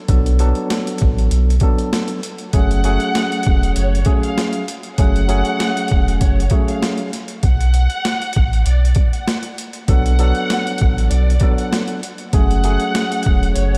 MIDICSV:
0, 0, Header, 1, 5, 480
1, 0, Start_track
1, 0, Key_signature, 3, "minor"
1, 0, Tempo, 612245
1, 68, Time_signature, 4, 2, 24, 8
1, 10801, End_track
2, 0, Start_track
2, 0, Title_t, "Violin section"
2, 0, Program_c, 0, 48
2, 1995, Note_on_c, 0, 78, 122
2, 2920, Note_off_c, 0, 78, 0
2, 2948, Note_on_c, 0, 73, 90
2, 3304, Note_off_c, 0, 73, 0
2, 3323, Note_on_c, 0, 77, 82
2, 3541, Note_off_c, 0, 77, 0
2, 3906, Note_on_c, 0, 78, 124
2, 4836, Note_off_c, 0, 78, 0
2, 4869, Note_on_c, 0, 73, 84
2, 5225, Note_off_c, 0, 73, 0
2, 5241, Note_on_c, 0, 77, 72
2, 5460, Note_off_c, 0, 77, 0
2, 5827, Note_on_c, 0, 78, 121
2, 6757, Note_off_c, 0, 78, 0
2, 6791, Note_on_c, 0, 74, 84
2, 7146, Note_off_c, 0, 74, 0
2, 7176, Note_on_c, 0, 78, 80
2, 7388, Note_off_c, 0, 78, 0
2, 7746, Note_on_c, 0, 78, 125
2, 8676, Note_off_c, 0, 78, 0
2, 8703, Note_on_c, 0, 74, 92
2, 9061, Note_off_c, 0, 74, 0
2, 9072, Note_on_c, 0, 78, 80
2, 9295, Note_off_c, 0, 78, 0
2, 9676, Note_on_c, 0, 78, 122
2, 10601, Note_off_c, 0, 78, 0
2, 10632, Note_on_c, 0, 73, 94
2, 10801, Note_off_c, 0, 73, 0
2, 10801, End_track
3, 0, Start_track
3, 0, Title_t, "Tine electric piano"
3, 0, Program_c, 1, 4
3, 67, Note_on_c, 1, 54, 94
3, 70, Note_on_c, 1, 59, 82
3, 72, Note_on_c, 1, 62, 83
3, 75, Note_on_c, 1, 69, 104
3, 291, Note_off_c, 1, 54, 0
3, 293, Note_off_c, 1, 59, 0
3, 294, Note_off_c, 1, 62, 0
3, 296, Note_off_c, 1, 69, 0
3, 308, Note_on_c, 1, 54, 96
3, 311, Note_on_c, 1, 59, 86
3, 314, Note_on_c, 1, 62, 83
3, 316, Note_on_c, 1, 69, 105
3, 1203, Note_off_c, 1, 54, 0
3, 1205, Note_off_c, 1, 59, 0
3, 1206, Note_off_c, 1, 62, 0
3, 1208, Note_off_c, 1, 69, 0
3, 1272, Note_on_c, 1, 54, 95
3, 1275, Note_on_c, 1, 59, 84
3, 1278, Note_on_c, 1, 62, 86
3, 1280, Note_on_c, 1, 69, 110
3, 1718, Note_off_c, 1, 54, 0
3, 1719, Note_off_c, 1, 59, 0
3, 1721, Note_off_c, 1, 62, 0
3, 1722, Note_off_c, 1, 69, 0
3, 1987, Note_on_c, 1, 54, 87
3, 1989, Note_on_c, 1, 57, 91
3, 1992, Note_on_c, 1, 61, 85
3, 1995, Note_on_c, 1, 68, 103
3, 2212, Note_off_c, 1, 54, 0
3, 2213, Note_off_c, 1, 57, 0
3, 2214, Note_off_c, 1, 61, 0
3, 2215, Note_off_c, 1, 68, 0
3, 2229, Note_on_c, 1, 54, 94
3, 2232, Note_on_c, 1, 57, 87
3, 2234, Note_on_c, 1, 61, 76
3, 2237, Note_on_c, 1, 68, 102
3, 3124, Note_off_c, 1, 54, 0
3, 3125, Note_off_c, 1, 57, 0
3, 3127, Note_off_c, 1, 61, 0
3, 3128, Note_off_c, 1, 68, 0
3, 3178, Note_on_c, 1, 54, 91
3, 3180, Note_on_c, 1, 57, 85
3, 3184, Note_on_c, 1, 61, 89
3, 3186, Note_on_c, 1, 68, 109
3, 3631, Note_off_c, 1, 54, 0
3, 3632, Note_off_c, 1, 57, 0
3, 3634, Note_off_c, 1, 61, 0
3, 3635, Note_off_c, 1, 68, 0
3, 3909, Note_on_c, 1, 54, 93
3, 3912, Note_on_c, 1, 57, 89
3, 3915, Note_on_c, 1, 61, 93
3, 3917, Note_on_c, 1, 68, 101
3, 4133, Note_off_c, 1, 54, 0
3, 4134, Note_off_c, 1, 57, 0
3, 4135, Note_off_c, 1, 61, 0
3, 4137, Note_off_c, 1, 68, 0
3, 4143, Note_on_c, 1, 54, 91
3, 4146, Note_on_c, 1, 57, 90
3, 4148, Note_on_c, 1, 61, 87
3, 4151, Note_on_c, 1, 68, 104
3, 5041, Note_off_c, 1, 54, 0
3, 5042, Note_off_c, 1, 57, 0
3, 5044, Note_off_c, 1, 61, 0
3, 5045, Note_off_c, 1, 68, 0
3, 5109, Note_on_c, 1, 54, 97
3, 5112, Note_on_c, 1, 57, 94
3, 5114, Note_on_c, 1, 61, 81
3, 5117, Note_on_c, 1, 68, 97
3, 5556, Note_off_c, 1, 54, 0
3, 5558, Note_off_c, 1, 57, 0
3, 5559, Note_off_c, 1, 61, 0
3, 5560, Note_off_c, 1, 68, 0
3, 7747, Note_on_c, 1, 54, 96
3, 7750, Note_on_c, 1, 59, 88
3, 7753, Note_on_c, 1, 62, 83
3, 7756, Note_on_c, 1, 69, 101
3, 7972, Note_off_c, 1, 54, 0
3, 7973, Note_off_c, 1, 59, 0
3, 7975, Note_off_c, 1, 62, 0
3, 7976, Note_off_c, 1, 69, 0
3, 7989, Note_on_c, 1, 54, 100
3, 7992, Note_on_c, 1, 59, 87
3, 7994, Note_on_c, 1, 62, 87
3, 7997, Note_on_c, 1, 69, 108
3, 8884, Note_off_c, 1, 54, 0
3, 8885, Note_off_c, 1, 59, 0
3, 8887, Note_off_c, 1, 62, 0
3, 8888, Note_off_c, 1, 69, 0
3, 8953, Note_on_c, 1, 54, 99
3, 8956, Note_on_c, 1, 59, 85
3, 8959, Note_on_c, 1, 62, 86
3, 8961, Note_on_c, 1, 69, 107
3, 9399, Note_off_c, 1, 54, 0
3, 9400, Note_off_c, 1, 59, 0
3, 9401, Note_off_c, 1, 62, 0
3, 9402, Note_off_c, 1, 69, 0
3, 9667, Note_on_c, 1, 54, 87
3, 9670, Note_on_c, 1, 57, 87
3, 9673, Note_on_c, 1, 61, 86
3, 9675, Note_on_c, 1, 68, 108
3, 9892, Note_off_c, 1, 54, 0
3, 9893, Note_off_c, 1, 57, 0
3, 9894, Note_off_c, 1, 61, 0
3, 9896, Note_off_c, 1, 68, 0
3, 9909, Note_on_c, 1, 54, 93
3, 9912, Note_on_c, 1, 57, 85
3, 9915, Note_on_c, 1, 61, 80
3, 9917, Note_on_c, 1, 68, 102
3, 10801, Note_off_c, 1, 54, 0
3, 10801, Note_off_c, 1, 57, 0
3, 10801, Note_off_c, 1, 61, 0
3, 10801, Note_off_c, 1, 68, 0
3, 10801, End_track
4, 0, Start_track
4, 0, Title_t, "Sub bass"
4, 0, Program_c, 2, 38
4, 70, Note_on_c, 2, 35, 116
4, 417, Note_off_c, 2, 35, 0
4, 799, Note_on_c, 2, 33, 89
4, 1012, Note_off_c, 2, 33, 0
4, 1031, Note_on_c, 2, 35, 100
4, 1247, Note_off_c, 2, 35, 0
4, 1989, Note_on_c, 2, 30, 107
4, 2336, Note_off_c, 2, 30, 0
4, 2719, Note_on_c, 2, 28, 92
4, 2931, Note_off_c, 2, 28, 0
4, 2951, Note_on_c, 2, 30, 100
4, 3167, Note_off_c, 2, 30, 0
4, 3909, Note_on_c, 2, 30, 102
4, 4256, Note_off_c, 2, 30, 0
4, 4639, Note_on_c, 2, 28, 96
4, 4851, Note_off_c, 2, 28, 0
4, 4871, Note_on_c, 2, 30, 106
4, 5087, Note_off_c, 2, 30, 0
4, 5829, Note_on_c, 2, 35, 109
4, 6176, Note_off_c, 2, 35, 0
4, 6559, Note_on_c, 2, 33, 89
4, 6772, Note_off_c, 2, 33, 0
4, 6791, Note_on_c, 2, 35, 109
4, 7007, Note_off_c, 2, 35, 0
4, 7750, Note_on_c, 2, 35, 115
4, 8097, Note_off_c, 2, 35, 0
4, 8480, Note_on_c, 2, 33, 93
4, 8692, Note_off_c, 2, 33, 0
4, 8712, Note_on_c, 2, 35, 101
4, 8928, Note_off_c, 2, 35, 0
4, 9670, Note_on_c, 2, 30, 106
4, 10017, Note_off_c, 2, 30, 0
4, 10400, Note_on_c, 2, 28, 93
4, 10612, Note_off_c, 2, 28, 0
4, 10632, Note_on_c, 2, 30, 101
4, 10801, Note_off_c, 2, 30, 0
4, 10801, End_track
5, 0, Start_track
5, 0, Title_t, "Drums"
5, 66, Note_on_c, 9, 42, 91
5, 68, Note_on_c, 9, 36, 118
5, 144, Note_off_c, 9, 42, 0
5, 147, Note_off_c, 9, 36, 0
5, 205, Note_on_c, 9, 42, 61
5, 283, Note_off_c, 9, 42, 0
5, 306, Note_on_c, 9, 42, 75
5, 385, Note_off_c, 9, 42, 0
5, 432, Note_on_c, 9, 42, 49
5, 511, Note_off_c, 9, 42, 0
5, 551, Note_on_c, 9, 42, 93
5, 552, Note_on_c, 9, 38, 102
5, 630, Note_off_c, 9, 38, 0
5, 630, Note_off_c, 9, 42, 0
5, 683, Note_on_c, 9, 42, 62
5, 762, Note_off_c, 9, 42, 0
5, 771, Note_on_c, 9, 42, 70
5, 798, Note_on_c, 9, 36, 103
5, 849, Note_off_c, 9, 42, 0
5, 876, Note_off_c, 9, 36, 0
5, 929, Note_on_c, 9, 42, 57
5, 1007, Note_off_c, 9, 42, 0
5, 1028, Note_on_c, 9, 42, 96
5, 1107, Note_off_c, 9, 42, 0
5, 1178, Note_on_c, 9, 42, 57
5, 1254, Note_off_c, 9, 42, 0
5, 1254, Note_on_c, 9, 42, 78
5, 1264, Note_on_c, 9, 36, 102
5, 1332, Note_off_c, 9, 42, 0
5, 1342, Note_off_c, 9, 36, 0
5, 1399, Note_on_c, 9, 42, 51
5, 1478, Note_off_c, 9, 42, 0
5, 1511, Note_on_c, 9, 38, 120
5, 1519, Note_on_c, 9, 42, 95
5, 1590, Note_off_c, 9, 38, 0
5, 1597, Note_off_c, 9, 42, 0
5, 1629, Note_on_c, 9, 42, 58
5, 1707, Note_off_c, 9, 42, 0
5, 1750, Note_on_c, 9, 42, 90
5, 1829, Note_off_c, 9, 42, 0
5, 1869, Note_on_c, 9, 42, 54
5, 1948, Note_off_c, 9, 42, 0
5, 1984, Note_on_c, 9, 42, 94
5, 1988, Note_on_c, 9, 36, 120
5, 2063, Note_off_c, 9, 42, 0
5, 2066, Note_off_c, 9, 36, 0
5, 2123, Note_on_c, 9, 42, 60
5, 2202, Note_off_c, 9, 42, 0
5, 2226, Note_on_c, 9, 42, 77
5, 2304, Note_off_c, 9, 42, 0
5, 2351, Note_on_c, 9, 42, 50
5, 2430, Note_off_c, 9, 42, 0
5, 2470, Note_on_c, 9, 42, 91
5, 2471, Note_on_c, 9, 38, 105
5, 2549, Note_off_c, 9, 38, 0
5, 2549, Note_off_c, 9, 42, 0
5, 2602, Note_on_c, 9, 42, 61
5, 2681, Note_off_c, 9, 42, 0
5, 2690, Note_on_c, 9, 42, 68
5, 2718, Note_on_c, 9, 36, 105
5, 2768, Note_off_c, 9, 42, 0
5, 2796, Note_off_c, 9, 36, 0
5, 2848, Note_on_c, 9, 42, 56
5, 2926, Note_off_c, 9, 42, 0
5, 2946, Note_on_c, 9, 42, 98
5, 3025, Note_off_c, 9, 42, 0
5, 3096, Note_on_c, 9, 42, 57
5, 3173, Note_off_c, 9, 42, 0
5, 3173, Note_on_c, 9, 42, 82
5, 3184, Note_on_c, 9, 36, 101
5, 3252, Note_off_c, 9, 42, 0
5, 3262, Note_off_c, 9, 36, 0
5, 3319, Note_on_c, 9, 42, 53
5, 3397, Note_off_c, 9, 42, 0
5, 3431, Note_on_c, 9, 38, 121
5, 3438, Note_on_c, 9, 42, 96
5, 3509, Note_off_c, 9, 38, 0
5, 3517, Note_off_c, 9, 42, 0
5, 3549, Note_on_c, 9, 42, 59
5, 3627, Note_off_c, 9, 42, 0
5, 3671, Note_on_c, 9, 42, 94
5, 3749, Note_off_c, 9, 42, 0
5, 3789, Note_on_c, 9, 42, 55
5, 3868, Note_off_c, 9, 42, 0
5, 3905, Note_on_c, 9, 42, 95
5, 3908, Note_on_c, 9, 36, 125
5, 3983, Note_off_c, 9, 42, 0
5, 3986, Note_off_c, 9, 36, 0
5, 4043, Note_on_c, 9, 42, 61
5, 4122, Note_off_c, 9, 42, 0
5, 4146, Note_on_c, 9, 42, 76
5, 4224, Note_off_c, 9, 42, 0
5, 4272, Note_on_c, 9, 42, 49
5, 4350, Note_off_c, 9, 42, 0
5, 4391, Note_on_c, 9, 38, 105
5, 4391, Note_on_c, 9, 42, 91
5, 4469, Note_off_c, 9, 42, 0
5, 4470, Note_off_c, 9, 38, 0
5, 4523, Note_on_c, 9, 42, 61
5, 4601, Note_off_c, 9, 42, 0
5, 4610, Note_on_c, 9, 42, 70
5, 4638, Note_on_c, 9, 36, 99
5, 4689, Note_off_c, 9, 42, 0
5, 4716, Note_off_c, 9, 36, 0
5, 4769, Note_on_c, 9, 42, 55
5, 4847, Note_off_c, 9, 42, 0
5, 4867, Note_on_c, 9, 42, 98
5, 4869, Note_on_c, 9, 36, 97
5, 4945, Note_off_c, 9, 42, 0
5, 4948, Note_off_c, 9, 36, 0
5, 5018, Note_on_c, 9, 42, 58
5, 5094, Note_off_c, 9, 42, 0
5, 5094, Note_on_c, 9, 42, 79
5, 5104, Note_on_c, 9, 36, 100
5, 5172, Note_off_c, 9, 42, 0
5, 5182, Note_off_c, 9, 36, 0
5, 5239, Note_on_c, 9, 42, 52
5, 5318, Note_off_c, 9, 42, 0
5, 5351, Note_on_c, 9, 38, 123
5, 5358, Note_on_c, 9, 42, 92
5, 5429, Note_off_c, 9, 38, 0
5, 5436, Note_off_c, 9, 42, 0
5, 5469, Note_on_c, 9, 42, 57
5, 5548, Note_off_c, 9, 42, 0
5, 5591, Note_on_c, 9, 42, 92
5, 5592, Note_on_c, 9, 38, 37
5, 5669, Note_off_c, 9, 42, 0
5, 5670, Note_off_c, 9, 38, 0
5, 5708, Note_on_c, 9, 42, 57
5, 5787, Note_off_c, 9, 42, 0
5, 5824, Note_on_c, 9, 42, 91
5, 5828, Note_on_c, 9, 36, 121
5, 5902, Note_off_c, 9, 42, 0
5, 5906, Note_off_c, 9, 36, 0
5, 5963, Note_on_c, 9, 42, 60
5, 6041, Note_off_c, 9, 42, 0
5, 6066, Note_on_c, 9, 42, 77
5, 6144, Note_off_c, 9, 42, 0
5, 6191, Note_on_c, 9, 42, 49
5, 6270, Note_off_c, 9, 42, 0
5, 6311, Note_on_c, 9, 38, 101
5, 6311, Note_on_c, 9, 42, 90
5, 6389, Note_off_c, 9, 42, 0
5, 6390, Note_off_c, 9, 38, 0
5, 6442, Note_on_c, 9, 42, 61
5, 6520, Note_off_c, 9, 42, 0
5, 6530, Note_on_c, 9, 42, 71
5, 6558, Note_on_c, 9, 36, 104
5, 6608, Note_off_c, 9, 42, 0
5, 6636, Note_off_c, 9, 36, 0
5, 6688, Note_on_c, 9, 42, 58
5, 6767, Note_off_c, 9, 42, 0
5, 6787, Note_on_c, 9, 42, 97
5, 6866, Note_off_c, 9, 42, 0
5, 6938, Note_on_c, 9, 42, 57
5, 7014, Note_off_c, 9, 42, 0
5, 7014, Note_on_c, 9, 42, 82
5, 7024, Note_on_c, 9, 36, 106
5, 7092, Note_off_c, 9, 42, 0
5, 7103, Note_off_c, 9, 36, 0
5, 7159, Note_on_c, 9, 42, 51
5, 7238, Note_off_c, 9, 42, 0
5, 7272, Note_on_c, 9, 38, 127
5, 7279, Note_on_c, 9, 42, 93
5, 7350, Note_off_c, 9, 38, 0
5, 7358, Note_off_c, 9, 42, 0
5, 7391, Note_on_c, 9, 42, 59
5, 7469, Note_off_c, 9, 42, 0
5, 7512, Note_on_c, 9, 42, 93
5, 7591, Note_off_c, 9, 42, 0
5, 7631, Note_on_c, 9, 42, 55
5, 7709, Note_off_c, 9, 42, 0
5, 7747, Note_on_c, 9, 42, 97
5, 7749, Note_on_c, 9, 36, 119
5, 7825, Note_off_c, 9, 42, 0
5, 7828, Note_off_c, 9, 36, 0
5, 7885, Note_on_c, 9, 42, 61
5, 7963, Note_off_c, 9, 42, 0
5, 7987, Note_on_c, 9, 42, 75
5, 8066, Note_off_c, 9, 42, 0
5, 8113, Note_on_c, 9, 42, 49
5, 8191, Note_off_c, 9, 42, 0
5, 8232, Note_on_c, 9, 42, 91
5, 8233, Note_on_c, 9, 38, 104
5, 8311, Note_off_c, 9, 38, 0
5, 8311, Note_off_c, 9, 42, 0
5, 8364, Note_on_c, 9, 42, 62
5, 8443, Note_off_c, 9, 42, 0
5, 8452, Note_on_c, 9, 42, 72
5, 8479, Note_on_c, 9, 36, 102
5, 8530, Note_off_c, 9, 42, 0
5, 8558, Note_off_c, 9, 36, 0
5, 8610, Note_on_c, 9, 42, 59
5, 8688, Note_off_c, 9, 42, 0
5, 8708, Note_on_c, 9, 42, 98
5, 8786, Note_off_c, 9, 42, 0
5, 8859, Note_on_c, 9, 42, 57
5, 8935, Note_off_c, 9, 42, 0
5, 8935, Note_on_c, 9, 42, 80
5, 8945, Note_on_c, 9, 36, 106
5, 9013, Note_off_c, 9, 42, 0
5, 9023, Note_off_c, 9, 36, 0
5, 9081, Note_on_c, 9, 42, 53
5, 9159, Note_off_c, 9, 42, 0
5, 9193, Note_on_c, 9, 38, 119
5, 9200, Note_on_c, 9, 42, 95
5, 9271, Note_off_c, 9, 38, 0
5, 9278, Note_off_c, 9, 42, 0
5, 9311, Note_on_c, 9, 42, 60
5, 9389, Note_off_c, 9, 42, 0
5, 9432, Note_on_c, 9, 42, 93
5, 9511, Note_off_c, 9, 42, 0
5, 9551, Note_on_c, 9, 42, 54
5, 9629, Note_off_c, 9, 42, 0
5, 9666, Note_on_c, 9, 42, 94
5, 9669, Note_on_c, 9, 36, 125
5, 9745, Note_off_c, 9, 42, 0
5, 9748, Note_off_c, 9, 36, 0
5, 9805, Note_on_c, 9, 42, 61
5, 9883, Note_off_c, 9, 42, 0
5, 9907, Note_on_c, 9, 42, 78
5, 9985, Note_off_c, 9, 42, 0
5, 10033, Note_on_c, 9, 42, 47
5, 10111, Note_off_c, 9, 42, 0
5, 10152, Note_on_c, 9, 38, 104
5, 10152, Note_on_c, 9, 42, 95
5, 10230, Note_off_c, 9, 42, 0
5, 10231, Note_off_c, 9, 38, 0
5, 10284, Note_on_c, 9, 42, 62
5, 10362, Note_off_c, 9, 42, 0
5, 10371, Note_on_c, 9, 42, 70
5, 10399, Note_on_c, 9, 36, 106
5, 10449, Note_off_c, 9, 42, 0
5, 10477, Note_off_c, 9, 36, 0
5, 10529, Note_on_c, 9, 42, 58
5, 10607, Note_off_c, 9, 42, 0
5, 10628, Note_on_c, 9, 42, 97
5, 10706, Note_off_c, 9, 42, 0
5, 10777, Note_on_c, 9, 42, 54
5, 10801, Note_off_c, 9, 42, 0
5, 10801, End_track
0, 0, End_of_file